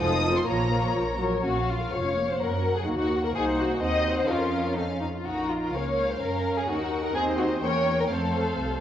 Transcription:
0.00 double bass section F1, viola section F3 F4, cello section D#4, violin section A4 C5 D#6
0.22 viola section F3 F4, violin section A4 C5
0.34 cello section C4, violin section C6
0.45 double bass section A#1, viola section F3 F4, cello section A#3, violin section A#4 C#5 A#5
0.70 viola section F3 F4, violin section A#4 C#5
0.94 double bass section A#1, viola section F3
1.19 viola section F#3, violin section A#4 C#5
1.44 double bass section A#1, viola section A#3 C#4, violin section F#4 F5
1.56 viola section C#4
1.68 viola section F4, violin section F4
1.79 viola section A#4
1.92 double bass section F1, cello section F3, viola section F4, violin section C#5
2.03 viola section C#4
2.14 viola section A#3
2.26 viola section C#4
2.30 violin section C5
2.38 double bass section F#2, cello section F#3, viola section A#3, violin section A#4 F#5
2.50 viola section C#4
2.61 viola section F#4
2.74 violin section G#4, viola section A#4
2.84 double bass section D#2, viola section A#3 D#4, cello section A#3
2.89 violin section F#4
2.98 viola section D#4
3.09 viola section F#4
3.22 viola section A#4, violin section A#4
3.34 double bass section C2, viola section D#4 C5, violin section G#4 F#5
3.59 violin section F#4
3.80 double bass section D#2, cello section C4, viola section D#4 C5, violin section D#5 F#5
4.18 violin section C5
4.28 double bass section F2, viola section C#4 A#4, cello section C#4, violin section F4 F5
4.76 viola section C4 A4, violin section D#4 F5
4.90 violin section C#4
5.01 violin section D#4
5.15 violin section F4
5.24 double bass section A#1, viola section D#4 A#4, violin section F#4 A#5
5.51 violin section F4
5.73 double bass section C#2, cello section A#3, viola section C#4, violin section C#5 F5
6.11 violin section C5
6.20 double bass section F#2, cello section C#4, viola section C#4 A#4, violin section A#4
6.57 violin section G#4
6.67 double bass section D#2, cello section D#4, viola section D#4 A#4, violin section F#4 F#5
7.04 violin section A#4
7.15 double bass section D#2, cello section C4, viola section D#4 C5, violin section G#4 D#5
7.38 violin section F#4
7.62 double bass section E2, cello section A#3, viola section C#4 A#4, violin section C#5 G5
8.00 violin section A#4
8.10 double bass section F2, cello section A3, viola section C4 C5, violin section A4 F5
8.60 double bass section C2

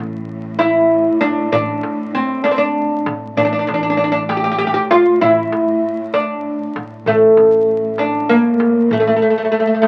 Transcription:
Already playing: upright bass A1, cello section A2
0.29 darbuka ka
0.59 oud E4, darbuka tek
1.21 oud D4, darbuka tek
1.52 upright bass A1, oud D4, darbuka dum
1.83 darbuka tek
2.15 oud C4, darbuka ka
2.44 oud D4, darbuka tek
2.51 oud C4
2.58 oud D4
3.06 upright bass A2, darbuka tek
3.36 upright bass A1, cello section A2, oud D4, darbuka dum
3.45 oud D4
3.53 oud D4
3.59 oud D4
3.67 upright bass A1, oud D4, darbuka tek
3.74 oud D4
3.83 oud D4
3.90 oud D4
3.97 oud D4
4.04 oud D4
4.12 oud D4
4.29 oud G4, darbuka tek
4.37 oud G4
4.44 oud G4
4.52 oud G4
4.59 oud G4
4.67 oud G4
4.74 oud G4
4.91 oud F4, darbuka tek
5.21 upright bass A1, oud E4, darbuka dum
5.53 darbuka tek
5.84 darbuka ka
6.14 oud D4, darbuka tek
6.76 upright bass A2, darbuka tek
7.06 upright bass A1, cello section A2, oud A3, darbuka dum
7.37 upright bass A1, darbuka tek
7.68 darbuka ka
7.98 oud D4, darbuka tek
8.29 oud A#3
8.60 darbuka tek
8.91 upright bass A1, oud A3, darbuka dum
9.00 oud A3
9.07 oud A3
9.16 oud A3
9.22 oud A3
9.30 oud A3
9.38 oud A3
9.45 oud A3
9.52 oud A3
9.60 oud A3
9.67 oud A3
9.74 oud A3
9.82 oud A3, darbuka tek

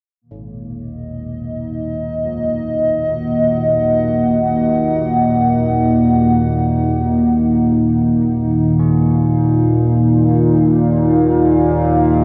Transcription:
0.22 synth drone D#2 A#2, analog synth pad A#3
0.31 church bells G#2
0.76 analog synth pad D#5
1.39 analog synth pad D#4
2.25 church bells F3
2.86 analog synth pad F#5
3.76 church bells D#3
8.66 analog synth pad F5
8.79 church bells G#4
8.84 analog synth pad F4

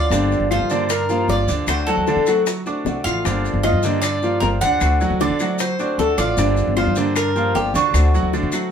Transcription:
Already playing: nylon-string guitar A3 C4 F#4, cuban tres D5
0.10 upright bass G1, nylon-string guitar D3 F3 A#3 D4 G4, grand piano D3 D4 D5, high bongo, maracas
0.31 high bongo, maracas
0.40 upright bass G1
0.51 grand piano F3 F4 F5, cuban tres C5, high bongo, claves, maracas
0.59 upright bass G2
0.70 grand piano D3 D4 D5, nylon-string guitar F3 A#3 D4 G4, maracas
0.89 cuban tres A#4, muted nylon-string guitar stroke, high bongo, claves, maracas
1.09 grand piano F3 F4 F5, nylon-string guitar F3 A#3 D4 G4, high bongo, maracas
1.28 upright bass G1, nylon-string guitar F3 A#3 D4 G4, cuban tres D5, high bongo, low bongo, maracas
1.47 upright bass D2, grand piano D3 D4 D5, high bongo, maracas
1.67 upright bass D2, nylon-string guitar D3 A3 C4 F#4, cuban tres C5, high bongo, claves, maracas
1.87 grand piano F#3 F#4 F#5, cuban tres A4, high bongo, maracas
1.97 upright bass D2
2.07 grand piano D3 D4 D5, high bongo, maracas
2.16 upright bass D3
2.26 grand piano F#3 F#4 F#5, nylon-string guitar A3 C4 F#4, claves, maracas
2.47 muted nylon-string guitar stroke, high bongo, maracas
2.66 nylon-string guitar A3 C4 F#4, grand piano D4 D5 D6, high bongo, maracas
2.85 upright bass C2, nylon-string guitar D3 A3 C4 F#4, high bongo, low bongo, maracas
3.04 upright bass A1, grand piano F3 F4 F5, cuban tres F5, high bongo, claves, maracas
3.24 upright bass G1, nylon-string guitar D3 F3 A#3 D4 G4, grand piano D3 D4 D5, high bongo, maracas
3.44 high bongo, maracas
3.54 upright bass G1
3.63 grand piano F3 F4 F5, cuban tres D#5, high bongo, claves, maracas
3.73 upright bass G2
3.83 grand piano D3 D4 D5, nylon-string guitar F3 A#3 D4 G4, maracas
4.02 cuban tres D5, high bongo, claves, maracas
4.22 grand piano F3 F4 F5, nylon-string guitar F3 A#3 D4 G4, high bongo, maracas
4.40 upright bass G1, nylon-string guitar F3 A#3 D4 G4, cuban tres A#4, high bongo, low bongo, maracas
4.61 upright bass D2, grand piano D3 D4 D5, cuban tres F#5, high bongo, maracas
4.81 upright bass D2, nylon-string guitar D3 A3 C4 F#4, high bongo, claves, maracas
5.01 grand piano F#3 F#4 F#5, high bongo, maracas
5.10 upright bass D2
5.20 grand piano D3 D4 D5, cuban tres D5, high bongo, maracas
5.30 upright bass D3
5.39 grand piano F#3 F#4 F#5, nylon-string guitar A3 C4 F#4, claves, maracas
5.59 cuban tres C5, muted nylon-string guitar stroke, high bongo, maracas
5.79 nylon-string guitar A3 C4 F#4, grand piano D4 D5 D6, high bongo, maracas
5.98 upright bass D2, nylon-string guitar D3 A3 C4 F#4, cuban tres A4, high bongo, low bongo, maracas
6.18 upright bass A1, grand piano F3 F4 F5, cuban tres D5, high bongo, claves, maracas
6.37 upright bass G1, nylon-string guitar D3 F3 A#3 D4 G4, grand piano D3 D4 D5, high bongo, maracas
6.57 high bongo, maracas
6.67 upright bass G1
6.76 grand piano F3 F4 F5, cuban tres C5, high bongo, claves, maracas
6.86 upright bass G2
6.96 grand piano D3 D4 D5, nylon-string guitar F3 A#3 D4 G4, maracas
7.16 cuban tres A#4, muted nylon-string guitar stroke, high bongo, claves, maracas
7.35 grand piano F3 F4 F5, nylon-string guitar F3 A#3 D4 G4, high bongo, maracas
7.55 upright bass G1, nylon-string guitar F3 A#3 D4 G4, cuban tres G4, high bongo, low bongo, maracas
7.74 upright bass D2, grand piano D3 D4 D5, cuban tres F#4, high bongo, maracas
7.94 upright bass D2, nylon-string guitar D3 A3 C4 F#4, high bongo, claves, maracas
8.14 grand piano F#3 F#4 F#5, high bongo, maracas
8.23 upright bass D2
8.33 grand piano D3 D4 D5, high bongo, maracas
8.43 upright bass D3
8.52 grand piano F#3 F#4 F#5, nylon-string guitar A3 C4 F#4, claves, maracas

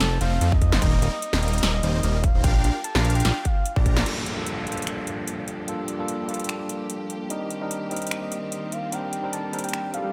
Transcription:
Already playing: soft synth lead A5
0.00 analog synth bass F1, supersaw synth F3 A3 C4 D#4 A4, snare, closed hi-hat
0.21 analog synth bass F1, supersaw synth F3 A3 C4 D#4 C5, soft synth lead F5, closed hi-hat
0.41 analog synth bass F2, supersaw synth F3 A3 C4 D#4 A4, closed hi-hat
0.52 soft synth lead D#5, kick
0.61 kick, closed hi-hat
0.72 analog synth bass F1, supersaw synth F3 A3 C4 D#4 C5, snare
0.82 analog synth bass D#1, supersaw synth G3 A#3 C4 D#4 A#4, soft synth lead D#5, kick, closed hi-hat, crash
1.02 analog synth bass D#1, supersaw synth G3 A#3 C4 D#4 A#4, closed hi-hat
1.13 soft synth lead D#5
1.22 closed hi-hat
1.33 analog synth bass D#1, supersaw synth G3 A#3 C4 D#4 A#4, snare
1.43 soft synth lead D#5, closed hi-hat
1.48 closed hi-hat
1.53 closed hi-hat
1.58 closed hi-hat
1.63 analog synth bass D#1, supersaw synth G3 A#3 C4 D#4 A#4, snare, closed hi-hat
1.74 soft synth lead D#5
1.83 analog synth bass D#1, supersaw synth G3 A#3 C4 D#4 C5, closed hi-hat
1.94 soft synth lead D#5
2.03 analog synth bass D#1, supersaw synth G3 A#3 C4 D#4 A#4, closed hi-hat
2.24 soft synth lead F5, kick, closed hi-hat
2.34 analog synth bass D#1, supersaw synth G3 A#3 C4 D#4 C5
2.44 analog synth bass A#1, supersaw synth D4 F4 G4 A#4 F5, soft synth lead G5, kick, closed hi-hat, crash
2.64 analog synth bass A#1, supersaw synth D4 F4 G4 A#4 F5, closed hi-hat
2.84 soft synth lead A5, closed hi-hat
2.95 analog synth bass A#1, supersaw synth D4 F4 G4 A#4 F5, snare
3.05 closed hi-hat
3.10 closed hi-hat
3.15 soft synth lead G5, closed hi-hat
3.20 closed hi-hat
3.25 analog synth bass A#1, supersaw synth D4 F4 G4 A#4 F5, snare, closed hi-hat
3.45 soft synth lead F5, kick, closed hi-hat
3.66 closed hi-hat
3.76 analog synth bass A#1, supersaw synth D4 F4 G4 A#4 A#5, soft synth lead D5, kick
3.86 kick, closed hi-hat
3.97 snare
4.05 string section F3 A#3 D4 G4, tine electric piano G3 A#3 D4 F4 A4, closed hi-hat, crash, downlifter
4.26 closed hi-hat
4.36 tine electric piano G3 A#3 D4 F4 A4
4.47 closed hi-hat
4.65 tine electric piano G3 A#3 D4 F4 A4, closed hi-hat
4.72 closed hi-hat
4.77 closed hi-hat
4.82 closed hi-hat
4.87 finger snap, closed hi-hat
5.07 closed hi-hat
5.28 closed hi-hat
5.48 closed hi-hat
5.67 tine electric piano G3 A#3 D4 F4 A4, closed hi-hat
5.88 closed hi-hat
5.98 tine electric piano G3 A#3 D4 F4 A4
6.08 closed hi-hat
6.27 tine electric piano G3 A#3 D4 F4, closed hi-hat
6.31 tine electric piano A4, closed hi-hat
6.40 closed hi-hat
6.44 closed hi-hat
6.49 finger snap, closed hi-hat
6.69 closed hi-hat
6.90 closed hi-hat
7.10 closed hi-hat
7.29 string section D#3 C4, tine electric piano G3 C4 D4 D#4 A#4, soft synth lead D#5, closed hi-hat
7.50 closed hi-hat
7.61 tine electric piano G3 C4 D4 D#4 A#4, soft synth lead D#5
7.71 closed hi-hat
7.89 tine electric piano G3 A#3 C4 D#4, soft synth lead D#5, closed hi-hat
7.93 tine electric piano A#4, closed hi-hat
8.02 closed hi-hat
8.07 closed hi-hat
8.11 finger snap, closed hi-hat
8.22 soft synth lead D#5
8.32 closed hi-hat
8.42 soft synth lead D#5
8.52 closed hi-hat
8.72 soft synth lead F5, closed hi-hat
8.92 tine electric piano G3 C4 D4 D#4 A#4, soft synth lead G5, closed hi-hat
9.13 closed hi-hat
9.23 tine electric piano G3 C4 D4 D#4 A#4
9.33 soft synth lead A5, closed hi-hat
9.52 tine electric piano G3 C4 D4 D#4 A#4, closed hi-hat
9.59 closed hi-hat
9.64 soft synth lead G5, closed hi-hat
9.69 closed hi-hat
9.73 finger snap, closed hi-hat, swell
9.92 tine electric piano G3 C4 D4 D#4 A4, soft synth lead F5, closed hi-hat

